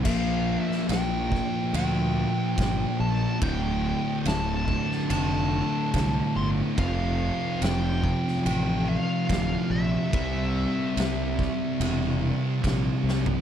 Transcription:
0.04 A#1 A#2 F3 A#3 F5, kick, crash
0.60 E5
0.71 snare
0.89 A#1 G5, snare, ride bell
1.30 A#2 F3 A#3, kick
1.35 snare
1.73 D2 G5, ride bell
2.56 G1 A#2 F3 A#3, kick, ride bell
2.61 snare
2.99 A#1 A5
3.40 D1 D2 A2 D3 G5, kick, ride bell
4.25 D1 A5, snare, ride bell
4.67 D2 A2 D3, kick
4.91 snare
5.10 F1 A5, ride bell
5.92 C2 D2 A2 D3, kick, ride bell
5.96 snare
6.35 G1 C6
6.76 F1 F2 C3 F3 F5, kick, ride bell
7.61 F1 G5, snare, ride bell
8.02 F2 C3 F3, kick
8.28 snare
8.45 A1 G5, ride bell
8.88 F5
9.27 D1 F2 C3 F3, kick, ride bell
9.32 snare
9.70 A#1 E5
10.11 C2 C3 G3, kick, ride bell
10.15 C4
10.96 C2, snare, ride bell
11.36 C3 G3 C4, kick
11.42 snare
11.80 E1, ride bell
12.61 A#1 C3 G3 C4, kick, ride bell
12.67 snare
13.03 C2
13.09 snare
13.26 floor tom

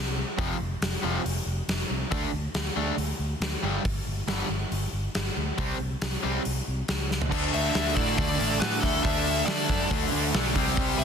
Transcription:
Already playing: C2
0.37 F1 F2 C3 F3, kick, open hi-hat
0.60 F1
0.81 F1, snare, open hi-hat
1.03 F1 F2 C3 F3
1.25 F1, open hi-hat
1.46 F1
1.68 F1, snare, open hi-hat
1.90 C2
2.11 D2 D3 A3 D4, kick, open hi-hat
2.32 D2
2.55 D2, snare, open hi-hat
2.76 D2 D3 A3 D4
2.97 D2, open hi-hat
3.19 D2
3.40 D2, snare, open hi-hat
3.63 G1 G2 D3 G3
3.85 G1, kick, open hi-hat
4.07 G1
4.27 G1 G2 D3 G3, snare, open hi-hat
4.49 G1
4.71 G1, open hi-hat
4.92 G1
5.15 G1, snare, open hi-hat
5.36 D2
5.58 C2 C3 G3 C4, kick, open hi-hat
5.80 C2
6.02 C2, snare, open hi-hat
6.23 C2 C3 G3 C4
6.45 C2, open hi-hat
6.68 C2
6.88 C#2, snare, open hi-hat
7.11 snare
7.22 floor tom
7.30 D2 D3 A3 D4 A4 E5, kick, crash
7.52 D2 A4 E5, open hi-hat
7.75 D2, snare, open hi-hat
7.95 A2 D3 A3 D4 A4 D5, kick, open hi-hat
8.17 D2 A4 D5, kick, open hi-hat
8.38 A1 D3 A3 D4, open hi-hat
8.60 A2 D3 A3 D4 F#4 B4, snare, open hi-hat
8.81 D2 A3 D4 E4 A4, kick, snare, open hi-hat
8.85 D3
9.02 D2 D3 A3 D4 A4 E5, kick, open hi-hat
9.27 open hi-hat
9.46 D3 A4 D5, snare, open hi-hat
9.68 F#2 D3 A3 D4, kick, open hi-hat
9.91 D2, kick, open hi-hat
10.12 D2 D3 A3 D4, open hi-hat
10.33 B1 D3 A3 D4, snare, open hi-hat
10.55 C2 C3 G3 C4 G4 D5, kick, open hi-hat
10.67 snare
10.77 C2, kick, open hi-hat
10.97 C2 C5 E5, open hi-hat

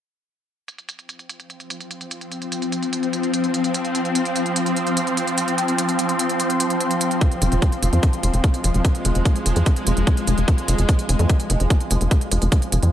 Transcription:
0.68 F3 C4, closed hi-hat
0.78 F5, closed hi-hat
0.89 closed hi-hat
0.99 closed hi-hat
1.09 closed hi-hat
1.19 closed hi-hat
1.28 F4, closed hi-hat
1.32 C6
1.40 closed hi-hat
1.50 closed hi-hat
1.60 closed hi-hat
1.70 closed hi-hat
1.81 closed hi-hat
1.91 closed hi-hat
2.01 closed hi-hat
2.11 closed hi-hat
2.21 closed hi-hat
2.32 closed hi-hat
2.42 closed hi-hat
2.52 closed hi-hat
2.62 closed hi-hat
2.72 closed hi-hat
2.83 closed hi-hat
2.93 closed hi-hat
3.03 closed hi-hat
3.13 closed hi-hat
3.23 closed hi-hat
3.34 closed hi-hat
3.44 closed hi-hat
3.54 closed hi-hat
3.64 closed hi-hat
3.74 closed hi-hat
3.85 closed hi-hat
3.95 closed hi-hat
4.05 closed hi-hat
4.15 closed hi-hat
4.25 closed hi-hat
4.36 closed hi-hat
4.46 closed hi-hat
4.56 closed hi-hat
4.66 closed hi-hat
4.76 closed hi-hat
4.87 closed hi-hat
4.97 closed hi-hat
5.07 closed hi-hat
5.17 closed hi-hat
5.27 closed hi-hat
5.38 closed hi-hat
5.48 closed hi-hat
5.58 closed hi-hat
5.68 closed hi-hat
5.78 closed hi-hat
5.89 closed hi-hat
5.99 closed hi-hat
6.09 closed hi-hat
6.19 closed hi-hat
6.29 closed hi-hat
6.40 closed hi-hat
6.50 closed hi-hat
6.60 closed hi-hat
6.70 closed hi-hat
6.80 closed hi-hat
6.91 closed hi-hat
7.01 closed hi-hat
7.11 closed hi-hat
7.21 G#3, kick, closed hi-hat
7.32 closed hi-hat
7.42 F1, closed hi-hat
7.52 F1, closed hi-hat
7.62 kick, closed hi-hat
7.72 closed hi-hat
7.83 F1, closed hi-hat
7.93 F2, closed hi-hat
8.03 kick, closed hi-hat
8.13 closed hi-hat
8.23 F1, closed hi-hat
8.34 F1, closed hi-hat
8.44 kick, closed hi-hat
8.54 closed hi-hat
8.64 F1, closed hi-hat
8.74 F1, closed hi-hat
8.85 kick, closed hi-hat
8.95 closed hi-hat
9.05 F1, closed hi-hat
9.15 F1, closed hi-hat
9.25 kick, closed hi-hat
9.36 closed hi-hat
9.46 F1, closed hi-hat
9.56 F2, closed hi-hat
9.66 kick, closed hi-hat
9.76 closed hi-hat
9.87 F1, closed hi-hat
9.97 F1, closed hi-hat
10.07 kick, closed hi-hat
10.17 closed hi-hat
10.27 F1, closed hi-hat
10.38 F1, closed hi-hat
10.48 kick, closed hi-hat
10.58 closed hi-hat
10.68 F1, closed hi-hat
10.78 F1, closed hi-hat
10.89 kick, closed hi-hat
10.99 closed hi-hat
11.09 F1, closed hi-hat
11.19 F2, closed hi-hat
11.29 kick, closed hi-hat
11.40 closed hi-hat
11.50 F1, closed hi-hat
11.60 F1, closed hi-hat
11.70 kick, closed hi-hat
11.81 closed hi-hat
11.91 F1, closed hi-hat
12.01 F1, closed hi-hat
12.11 kick, closed hi-hat
12.21 closed hi-hat
12.32 F1, closed hi-hat
12.42 F1, closed hi-hat
12.52 kick, closed hi-hat
12.62 closed hi-hat
12.72 F1, closed hi-hat
12.83 F2, closed hi-hat

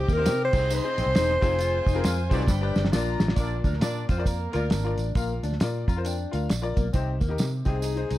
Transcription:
Already playing: C3 G4 D#5 D6
0.09 D#2 A#3, kick, closed hi-hat, tambourine
0.14 C4 D#4 A#4
0.19 G4 C5
0.25 C3 C4, snare, closed hi-hat, tambourine
0.45 C5
0.52 C2 C3 C4 D#4 G#4 C5 D#5 C6, kick, tambourine, crash
0.70 D#4, closed hi-hat, tambourine
0.74 C5
0.84 C4 D#4 G#4 C5
0.98 A#1 C4, closed hi-hat, tambourine
1.06 C2
1.15 E1 C4 D#4 G#4 C5, snare, closed hi-hat, tambourine
1.30 snare
1.41 F1 C4 D#4 F4 G#4 C5 G#5, kick, closed hi-hat, tambourine
1.59 F4, closed hi-hat, tambourine
1.87 F1 D#4, kick, closed hi-hat, tambourine
1.94 C4 F4 G#4 A#4
2.04 F2 G#3 F4 C5, snare, closed hi-hat, tambourine
2.29 C2 B2 C4 D#4 F4 G4 G#4 C5 D5, kick, closed hi-hat, tambourine
2.48 G1 G2 D4 G5 B5, kick, snare, tambourine
2.61 D4 G4 B4 D5
2.76 G1, snare, tambourine
2.85 snare
2.92 A#1 A#2 D4 F4 A#4 D5 A#5, snare, tambourine
3.20 A1, snare, tambourine
3.28 snare
3.35 A#1 A#2 A#3 D4 F4 A#4 D5, kick, closed hi-hat, tambourine
3.64 D2 A#3 D4 A#4, kick, closed hi-hat, tambourine
3.73 snare
3.81 A#2 D4 F4 A#4 D5, snare, closed hi-hat, tambourine
4.09 F2 C4 F4 C5, kick, snare, closed hi-hat, tambourine
4.17 F4 A#4 D5
4.26 A#3 A#4, kick, closed hi-hat, tambourine
4.53 D2 A#3 F4 A#4 D5, closed hi-hat, tambourine
4.70 G#1 D4, snare, closed hi-hat, tambourine
4.84 F4 A#4 D5
4.97 A1, closed hi-hat, tambourine
5.15 A#1 A#2 A#3 F4 A#4 F5, kick, closed hi-hat, tambourine
5.43 D2 D4, closed hi-hat, tambourine
5.53 snare
5.60 A#2 F4 A#4 D5, snare, closed hi-hat, tambourine
5.88 F2 F4 A#5, kick, closed hi-hat, tambourine
5.97 F4 A#4 C5
6.05 D4 G5, closed hi-hat, tambourine
6.31 D2 F4 A#4 F5, closed hi-hat, tambourine
6.49 A#1 D5, snare, closed hi-hat, tambourine
6.62 F4 A#4 D5
6.76 B1 A#3, kick, closed hi-hat, tambourine
6.93 C2 C3 C4 D#4 G4 C5, kick, closed hi-hat, tambourine
7.20 D#2 A#3, kick, closed hi-hat, tambourine
7.28 D#4 G4 A#4
7.38 C3, snare, closed hi-hat, tambourine
7.65 C2 C3 C4 D#4 G#4 C5, kick, snare, closed hi-hat, tambourine
7.82 D#4, closed hi-hat, tambourine
7.96 D#4 G#4 C5, closed hi-hat
8.09 C2 D#4, closed hi-hat, tambourine

